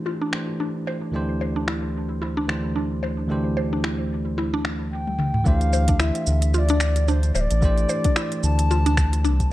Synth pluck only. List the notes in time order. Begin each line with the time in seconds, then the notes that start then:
0.06 F4
0.22 D4
0.60 D4
0.87 C5
1.41 C5
1.56 D4
1.68 E4
2.22 E4
2.37 D4
2.76 D4
3.03 C5
3.57 C5
3.73 D4
3.84 E4
4.38 E4
4.54 D4
5.73 C5
5.89 D4
6.00 E4
6.54 F4
6.70 D4
7.08 D4
7.35 C5
7.89 C5
8.05 D4
8.17 E4
8.71 F4
8.86 D4
9.24 D4